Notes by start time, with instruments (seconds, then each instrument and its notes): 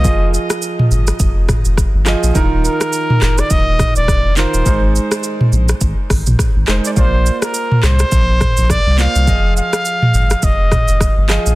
Already playing: trumpet D#5
0.03 sub bass F1, grand piano F3 F4 G#4 D#5, kick, shaker
0.34 shaker
0.50 cross-stick, shaker
0.62 shaker
0.79 mid tom
0.91 sub bass G1, shaker
1.07 cross-stick, shaker
1.20 sub bass F1, kick, shaker
1.49 kick, cross-stick, mid tom, shaker
1.65 sub bass F1, shaker
1.77 kick, cross-stick, shaker
1.94 sub bass G1
2.05 grand piano F3 F4 G#4 D#5, cross-stick, clap, shaker
2.23 sub bass A#1, shaker
2.34 sub bass D#1, grand piano D#3 D#4 E4 A#4, kick, shaker
2.42 grand piano F4
2.65 trumpet A#4, shaker
2.81 cross-stick, shaker
2.93 shaker
3.10 mid tom
3.22 sub bass F1, cross-stick, clap, shaker
3.38 trumpet D5, cross-stick, shaker
3.50 sub bass D#1, trumpet D#5, kick, shaker
3.79 kick, cross-stick, mid tom, shaker
3.96 sub bass D#1, trumpet D5, shaker
4.08 kick, cross-stick, shaker
4.25 sub bass F1
4.36 grand piano D#3 D#4 F4 A#4, trumpet C5, clap, shaker
4.54 sub bass D#1, shaker
4.65 sub bass G#1, grand piano G#3 D#4 A#4 C5, kick, shaker
4.96 shaker
5.12 cross-stick, shaker
5.23 shaker
5.41 mid tom
5.52 sub bass A#1, shaker
5.69 cross-stick, shaker
5.81 sub bass G#1, kick, shaker
6.10 sub bass G#1, kick, cross-stick, open hi-hat, shaker
6.26 sub bass A#1, mid tom, shaker
6.39 kick, cross-stick, shaker
6.56 sub bass G#1
6.67 sub bass F1, grand piano G#3 D#4 A#4 C5, trumpet C5, cross-stick, clap, shaker
6.85 trumpet D5, shaker
6.96 sub bass A#1, grand piano A#3 F4 C5 D5, trumpet C5, kick, shaker
7.26 shaker
7.42 trumpet A#4, cross-stick, shaker
7.54 shaker
7.72 mid tom
7.83 sub bass C2, trumpet C5, cross-stick, clap, shaker
7.99 cross-stick, shaker
8.12 sub bass A#1, kick, shaker
8.41 kick, cross-stick, mid tom, shaker
8.57 sub bass A#1, shaker
8.70 trumpet D5, kick, cross-stick, shaker
8.86 sub bass C2
8.97 grand piano A#3 F4 C5 D5, trumpet F5, clap, shaker
9.15 sub bass C2, shaker
9.26 sub bass F1, grand piano F3 F4 G#4 D#5, kick, shaker
9.57 trumpet F5, shaker
9.73 cross-stick, shaker
9.85 shaker
10.02 mid tom
10.14 sub bass G1, shaker
10.30 cross-stick, shaker
10.43 sub bass F1, trumpet D#5, kick, shaker
10.71 kick, cross-stick, mid tom, shaker
10.88 sub bass F1, shaker
11.01 kick, cross-stick, shaker
11.17 sub bass G1
11.28 grand piano F3 F4 G#4 D#5, cross-stick, clap, shaker
11.46 sub bass A#1, shaker